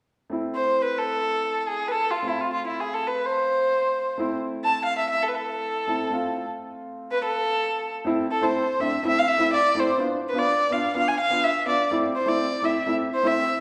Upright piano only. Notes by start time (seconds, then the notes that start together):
0.30 A3 C4 E4
2.22 A3 C4 F4
4.17 A3 C4 E4
5.87 A3 C4 E4
6.10 A3 C4 F4
8.05 A3 C4 E4
8.41 A3 C4 E4
8.80 A3 C4 D4
9.03 A3 C4 E4
9.37 A3 C4 E4
9.75 A3 C4 E4
9.98 B3 D4 F4
10.33 B3 D4 F4
10.70 B3 D4 F4
10.95 B3 D4 F4
11.30 B3 D4 F4
11.66 B3 D4 F4
11.91 A3 C4 E4
12.26 A3 C4 E4
12.62 A3 C4 E4
12.86 A3 C4 E4
13.23 A3 C4 E4